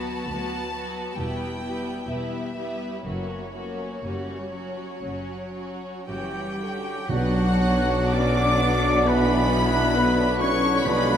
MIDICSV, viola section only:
0, 0, Header, 1, 2, 480
1, 0, Start_track
1, 0, Key_signature, 2, "minor"
1, 0, Tempo, 884956
1, 1128, Tempo, 980392
1, 1604, Time_signature, 4, 2, 24, 8
1, 2568, Tempo, 1034483
1, 4008, Tempo, 934579
1, 4488, Tempo, 896861
1, 5618, End_track
2, 0, Start_track
2, 0, Title_t, "Viola section"
2, 0, Program_c, 0, 48
2, 0, Note_on_c, 0, 54, 37
2, 0, Note_on_c, 0, 59, 39
2, 159, Note_off_c, 0, 59, 0
2, 160, Note_off_c, 0, 54, 0
2, 166, Note_on_c, 0, 59, 37
2, 167, Note_on_c, 0, 54, 37
2, 391, Note_off_c, 0, 59, 0
2, 394, Note_off_c, 0, 54, 0
2, 397, Note_on_c, 0, 59, 34
2, 400, Note_on_c, 0, 54, 36
2, 627, Note_off_c, 0, 59, 0
2, 632, Note_off_c, 0, 54, 0
2, 633, Note_on_c, 0, 55, 38
2, 633, Note_on_c, 0, 59, 38
2, 871, Note_off_c, 0, 55, 0
2, 871, Note_off_c, 0, 59, 0
2, 878, Note_on_c, 0, 55, 36
2, 879, Note_on_c, 0, 59, 36
2, 1124, Note_off_c, 0, 55, 0
2, 1124, Note_off_c, 0, 59, 0
2, 1130, Note_on_c, 0, 55, 36
2, 1131, Note_on_c, 0, 59, 34
2, 1356, Note_off_c, 0, 59, 0
2, 1359, Note_off_c, 0, 55, 0
2, 1362, Note_on_c, 0, 59, 35
2, 1364, Note_on_c, 0, 55, 33
2, 1598, Note_off_c, 0, 59, 0
2, 1600, Note_off_c, 0, 55, 0
2, 1602, Note_on_c, 0, 54, 33
2, 1602, Note_on_c, 0, 58, 33
2, 1839, Note_off_c, 0, 58, 0
2, 1840, Note_off_c, 0, 54, 0
2, 1845, Note_on_c, 0, 54, 32
2, 1845, Note_on_c, 0, 58, 32
2, 2080, Note_off_c, 0, 54, 0
2, 2080, Note_off_c, 0, 58, 0
2, 2086, Note_on_c, 0, 55, 41
2, 2309, Note_off_c, 0, 55, 0
2, 2323, Note_on_c, 0, 54, 39
2, 3060, Note_off_c, 0, 54, 0
2, 3061, Note_on_c, 0, 52, 40
2, 3296, Note_off_c, 0, 52, 0
2, 3300, Note_on_c, 0, 50, 36
2, 3531, Note_off_c, 0, 50, 0
2, 3535, Note_on_c, 0, 59, 55
2, 3536, Note_on_c, 0, 54, 57
2, 5432, Note_off_c, 0, 59, 0
2, 5433, Note_off_c, 0, 54, 0
2, 5449, Note_on_c, 0, 56, 65
2, 5450, Note_on_c, 0, 50, 65
2, 5618, Note_off_c, 0, 50, 0
2, 5618, Note_off_c, 0, 56, 0
2, 5618, End_track
0, 0, End_of_file